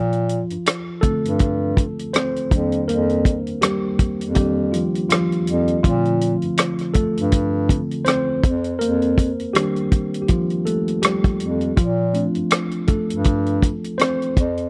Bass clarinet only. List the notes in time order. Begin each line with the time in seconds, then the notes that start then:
Already playing: A#2
0.51 G2
1.04 G2
1.25 G2
2.52 F2
2.89 F2
3.48 F2
3.99 F2
4.21 F2
5.48 F2
5.85 A#2
6.44 G2
6.96 G2
7.17 G2
8.44 F2
8.81 F2
9.40 F2
11.41 F2
11.77 A#2
12.37 G2
12.89 G2
13.11 G2
14.37 F2